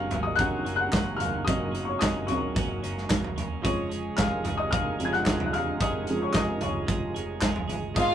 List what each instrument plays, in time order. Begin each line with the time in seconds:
Already playing: clean electric guitar F#2 C#3 F#3 A#3 C#4, string section C#3 F#3 A#3, upright piano F#3 A#3 C#4 C#5 F5 C#6 F6
0.10 fingered electric bass G#1, clean electric guitar F#3 A#3 C#4 F#4, closed hi-hat, floor tom
0.23 upright piano D#5 D#6
0.36 fingered electric bass F#1, clean electric guitar F#3 A#3 C#4, upright piano F#3 A#3 C#4 F#6, kick, closed hi-hat
0.40 clean electric guitar F#4, upright piano F#5
0.65 fingered electric bass F#1, clean electric guitar F#3 A#3 C#4 F#4, closed hi-hat
0.76 upright piano F#6
0.81 upright piano F#5
0.92 fingered electric bass F#1, clean electric guitar F#2 C#3 F#3 A#3 C#4 F#4, kick, snare, clap, closed hi-hat
1.17 fingered electric bass F1, clean electric guitar C#4 F#4, upright piano F6, closed hi-hat, floor tom
1.21 clean electric guitar F#3 A#3, upright piano F5
1.45 fingered electric bass F#1, clean electric guitar F#2 C#3 F#3 A#3 C#4 F#4, upright piano F#3 A#3 D#6, kick, closed hi-hat
1.49 upright piano C#4 D#5
1.72 clean electric guitar F#3 A#3 C#4 F#4, closed hi-hat
1.85 upright piano C#6
1.89 upright piano C#5
1.99 fingered electric bass F#1, clean electric guitar F#2 C#3 F#3 A#3 C#4 F#4, upright piano D#5 D#6, kick, snare, clap, closed hi-hat
2.27 fingered electric bass A#1, upright piano F#3 A#3 C#4 C#5 C#6, clean electric guitar F#3 A#3 C#4 F#4, closed hi-hat, floor tom
2.54 fingered electric bass F#1, clean electric guitar F#3 A#3 C#4 F#4, kick, closed hi-hat
2.82 fingered electric bass F#1, clean electric guitar F#3 A#3 C#4 F#4, closed hi-hat
2.98 snare
3.09 fingered electric bass F#1, clean electric guitar F#2 C#3 F#3 A#3 C#4 F#4, kick, snare, clap, closed hi-hat
3.24 floor tom
3.36 fingered electric bass E1, clean electric guitar F#3 A#3 C#4 F#4, closed hi-hat, floor tom
3.62 fingered electric bass F1, string section C#3 F3 G#3, clean electric guitar F3 G#3 C#4 G#4, upright piano F3 G#3 C#4 C#5 C#6, kick, closed hi-hat
3.89 clean electric guitar G#3 C#4 G#4, closed hi-hat
4.17 fingered electric bass F1, clean electric guitar F3 G#3 C#4 G#4, upright piano F5 F6, kick, snare, clap, closed hi-hat
4.44 fingered electric bass F#1, clean electric guitar G#3 C#4 G#4, closed hi-hat, floor tom
4.57 upright piano D#5 D#6
4.71 fingered electric bass F1, clean electric guitar F3 G#3 C#4 G#4, upright piano F5 F6, kick, closed hi-hat
4.99 fingered electric bass F1, upright piano F3 G#3 C#4, clean electric guitar G#3 C#4 G#4, closed hi-hat
5.05 upright piano G#6
5.13 upright piano F#5 F#6, snare
5.26 fingered electric bass F1, clean electric guitar F3 G#3 C#4 G#4, kick, snare, clap, closed hi-hat
5.40 floor tom
5.46 upright piano F#6
5.53 fingered electric bass E1, clean electric guitar G#3 C#4 G#4, upright piano F5 F6, closed hi-hat, floor tom
5.80 fingered electric bass F1, clean electric guitar F3 G#3 C#4 G#4, upright piano D#5 D#6, kick, closed hi-hat
6.07 upright piano F3 G#3 C#4, clean electric guitar C#4 G#4, closed hi-hat
6.11 clean electric guitar G#3
6.22 upright piano C#5 C#6
6.33 fingered electric bass F1, clean electric guitar F3 G#3 C#4 G#4, upright piano D#5 D#6, kick, snare, clap, closed hi-hat
6.61 fingered electric bass F#1, clean electric guitar G#3 C#4 G#4, upright piano C#5 C#6, closed hi-hat, floor tom
6.87 fingered electric bass F1, clean electric guitar F3 G#3 C#4 G#4, kick, closed hi-hat
7.14 fingered electric bass F1, clean electric guitar G#3 C#4 G#4, closed hi-hat
7.41 fingered electric bass F1, clean electric guitar F3 G#3 C#4 G#4, kick, snare, clap, closed hi-hat
7.56 floor tom
7.67 fingered electric bass G1, clean electric guitar G#3 C#4 G#4, closed hi-hat, floor tom
7.94 fingered electric bass G#1, clean electric guitar G#2 D#3 G#3 B3 D#4 G#4, string section D#3 B3, upright piano D#3 G#3 B3 D#5 D#6, violin section F4 F5, kick, closed hi-hat